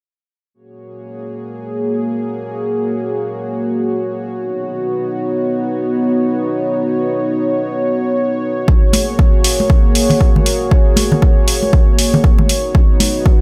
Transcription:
0.54 analog synth pad A#3 F#4 G#4 C#5
4.36 analog synth pad B3 D#4
8.68 analog synth pad A#3 F#4 G#4, kick
8.93 open hi-hat, high conga
9.19 kick
9.44 open hi-hat
9.60 high conga
9.70 kick
9.95 open hi-hat
10.10 open hi-hat, low conga
10.21 kick
10.36 high conga, low conga
10.46 open hi-hat
10.71 kick
10.96 open hi-hat, high conga
11.12 low conga
11.22 kick
11.48 open hi-hat
11.63 high conga
11.73 kick
11.99 open hi-hat
12.14 low conga
12.24 kick
12.38 high conga, low conga
12.49 analog synth pad B3 D#4 F#4, open hi-hat
12.75 kick
13.00 open hi-hat, high conga
13.26 kick

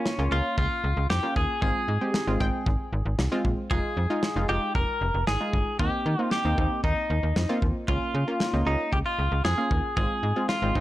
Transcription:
Already playing: synth pluck C#4, clean electric guitar C#4
0.06 snare
0.19 fm bass C#2, synth pluck A#3 C#4 F4
0.32 fm bass C#2, synth pluck A#3 C#4 F4, clean electric guitar F4
0.58 fm bass C#2, clean electric guitar F4, kick
0.84 fm bass C#2
0.97 fm bass C#2
1.10 fm bass F2, clean electric guitar G4, snare
1.23 synth pluck A#3 C#4 F4
1.36 fm bass D#2, clean electric guitar G#4, kick
1.62 fm bass G#1, synth pluck G#3 C4 F4, clean electric guitar G#4, kick
1.88 fm bass G#2
2.01 synth pluck G#3 C4 G4
2.14 snare
2.27 fm bass G#1, synth pluck G#3 C4 F4
2.40 fm bass G#1, synth pluck G#3 C4 G5, kick
2.66 fm bass G#1, kick
2.93 fm bass G#1
3.06 fm bass G#1
3.19 fm bass C2, snare
3.32 synth pluck G#3 C4 F4
3.45 fm bass A#1, kick
3.71 fm bass F1, synth pluck G#3 D#4 F4, clean electric guitar G#4, kick
3.97 fm bass F2
4.10 synth pluck G#3 D#4 F4
4.23 snare
4.36 fm bass F1, synth pluck G#3 D#4 F4
4.49 fm bass F1, synth pluck G#3 D#4 F4, clean electric guitar G4
4.75 fm bass F1, clean electric guitar A#4, kick
5.01 fm bass F1
5.14 fm bass F1
5.27 fm bass G#1, clean electric guitar G#4, snare
5.41 synth pluck G#3 D#4 F4
5.53 fm bass G1, kick
5.79 fm bass D#2, synth pluck A#3 C4 D#4, clean electric guitar G4, kick
6.06 fm bass D#3
6.19 synth pluck A#3 C4 D#4
6.31 clean electric guitar G4, snare
6.45 fm bass D#2, synth pluck A#3 C4 D#4
6.58 fm bass D#2, synth pluck A#3 C4 D#4, kick
6.84 fm bass D#2, clean electric guitar D#4, kick
7.10 fm bass D#2
7.23 fm bass D#2
7.36 fm bass F2, snare
7.49 synth pluck A#3 C4 F4
7.62 fm bass D#2, kick
7.88 fm bass C#2, synth pluck A#3 C#4 F4, clean electric guitar F4, kick
8.14 fm bass C#3
8.28 synth pluck A#3 C#4 F4
8.40 snare
8.54 fm bass C#2, synth pluck A#3 C#4 D#4
8.66 fm bass C#2, synth pluck A#3 C#4 F4, clean electric guitar D#4
8.93 fm bass C#2, clean electric guitar G4, kick
9.06 clean electric guitar F4
9.19 fm bass C#2
9.32 fm bass C#2
9.45 fm bass F2, clean electric guitar G#4, snare
9.58 synth pluck A#3 C#4 F4
9.71 fm bass D#2, kick
9.97 fm bass G#1, synth pluck G#3 C4 F4, clean electric guitar G#4, kick
10.23 fm bass G#2
10.36 synth pluck G#3 C4 F4
10.49 clean electric guitar F4, snare
10.62 fm bass G#1, synth pluck G#3 C4 F4
10.75 fm bass G#1, synth pluck G#3 C4 D#4, kick

